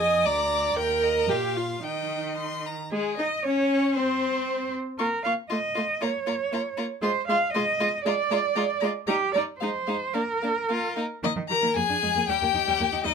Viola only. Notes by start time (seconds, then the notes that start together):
0.00 D#5
0.25 D5
0.77 A#4
1.29 G4
1.56 F4
1.83 D#4
2.92 G#3
3.19 D#4
3.44 C#4
3.96 C4
4.99 A#3
5.26 A#3
5.51 A3
5.77 A3
6.02 A#3
6.26 A#3
6.52 A#3
6.78 A#3
7.02 G#3
7.28 G#3
7.55 G#3
7.80 G#3
8.05 G#3
8.31 G#3
8.55 G#3
8.82 G#3
9.08 G3
9.35 G3
9.61 G#3
9.87 G#3
10.14 A#3
10.42 A#3
10.69 A#3
10.96 A#3
11.23 A#3
11.36 D#4
11.50 G4
11.62 A#3
11.76 A#3
11.90 D4
12.02 G#3
12.16 A#3
12.29 G3
12.43 A#3
12.55 D#4
12.67 G3
12.80 A#3
12.92 D#4
13.04 G3